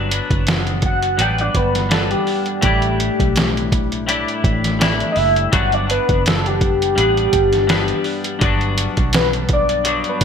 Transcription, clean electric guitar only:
0.00 0.10 B3 loud
0.09 1.17 F#3 soft
0.09 1.19 B3 medium
0.09 1.20 D4 medium
1.17 1.88 G2 medium
1.17 1.91 F#3 medium
1.17 1.91 B3 medium
1.17 1.92 D4 medium
1.89 2.61 G2 medium
1.89 2.64 B3 medium
1.89 2.65 D4 medium
2.61 4.05 A2 medium
2.61 4.07 G3 medium
2.61 4.09 D4 medium
2.66 4.08 E4 medium
4.07 4.78 A2 medium
4.07 4.80 G3 medium
4.07 4.81 D4 medium
4.07 4.81 E4 medium
4.79 5.51 A2 medium
4.79 5.52 G3 medium
4.79 5.52 D4 medium
4.79 5.53 E4 medium
5.52 5.88 G2 medium
5.52 5.89 F#3 medium
5.52 5.88 B3 medium
5.52 5.86 D4 medium
5.87 6.98 B3 soft
5.87 6.99 D4 medium
6.96 7.66 G2 medium
6.96 7.70 B3 medium
6.96 7.70 D4 medium
7.67 8.38 G2 medium
7.67 8.42 B3 medium
7.67 8.44 D4 medium
8.39 9.83 G2 loud
8.39 9.85 F#3 medium
8.39 9.86 B3 loud
8.44 9.87 D4 loud
9.84 10.24 G2 medium
9.84 10.24 F#3 medium
9.84 10.24 B3 medium
9.84 10.24 D4 medium

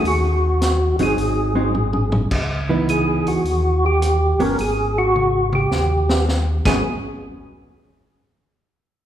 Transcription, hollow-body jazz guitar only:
0.99 1.52 F#3 medium
0.99 1.52 C4 medium
0.99 1.52 D#4 medium
1.55 1.72 F#3 medium
1.55 1.73 C4 medium
1.55 1.73 D#4 medium
2.69 3.41 E3 medium
2.69 3.41 B3 medium
2.69 3.42 D#4 medium
4.40 4.56 F#3 medium
4.40 4.56 B3 medium
4.40 4.57 C#4 medium
6.67 6.83 F#3 soft
6.67 6.83 B3 medium
6.67 6.83 C#4 medium

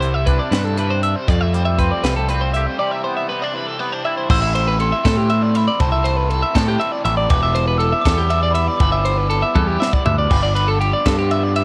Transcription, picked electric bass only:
0.00 0.39 C2 loud
0.51 1.14 G2 medium
1.28 1.90 F2 loud
2.04 2.66 C2 medium
4.30 4.92 A1 loud
5.05 5.67 A2 loud
5.80 6.42 C2 loud
6.55 6.76 A2 loud
7.05 7.26 A1 loud
7.30 7.92 E1 loud
8.05 8.67 E2 medium
8.80 9.42 G1 loud
9.55 9.76 E2 loud
10.06 10.26 D2 loud
10.31 10.93 G1 loud
11.06 11.64 G2 loud

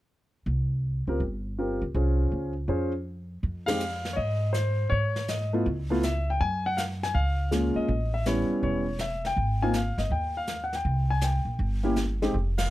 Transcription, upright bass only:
0.46 1.04 C2 medium
1.07 1.20 C#2 medium
1.20 1.78 G1 medium
1.82 1.94 C#2 medium
1.94 2.29 C2 medium
2.32 2.67 C#2 medium
2.68 3.39 F2 medium
3.43 4.14 F2 medium
4.17 4.88 G#2 medium
4.92 5.62 G#2 medium
5.66 6.37 C#2 medium
6.40 7.11 F#2 medium
7.14 7.72 C#2 medium
7.76 muted upright bass stroke soft
7.88 8.46 A1 medium
8.50 muted upright bass stroke soft
8.63 9.33 E1 medium
9.36 9.94 G#1 medium
9.98 10.10 G1 medium
10.10 10.81 D#2 medium
10.85 11.43 C2 medium
11.45 11.58 A#1 medium
11.59 12.30 G1 medium
12.34 12.70 F1 medium

